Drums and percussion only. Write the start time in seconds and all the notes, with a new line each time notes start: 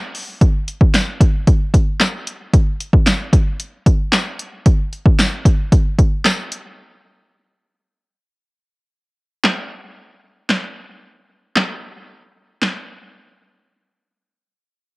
0.15 open hi-hat
0.41 kick, closed hi-hat
0.68 closed hi-hat
0.81 kick
0.94 snare, clap, closed hi-hat, tambourine
1.21 kick, closed hi-hat
1.47 kick, closed hi-hat
1.74 kick, closed hi-hat
2.00 snare, clap, closed hi-hat, tambourine
2.27 closed hi-hat
2.54 kick, closed hi-hat
2.80 closed hi-hat
2.93 kick
3.06 snare, clap, closed hi-hat, tambourine
3.33 kick, closed hi-hat
3.60 closed hi-hat
3.86 kick, closed hi-hat
4.12 snare, clap, closed hi-hat, tambourine
4.39 closed hi-hat
4.66 kick, closed hi-hat
4.93 closed hi-hat
5.06 kick
5.19 snare, clap, closed hi-hat, tambourine
5.45 kick, closed hi-hat
5.72 kick, closed hi-hat
5.99 kick, closed hi-hat
6.25 snare, clap, closed hi-hat, tambourine
6.52 closed hi-hat
9.44 snare, clap
10.49 snare, clap
11.56 snare, clap
12.62 snare, clap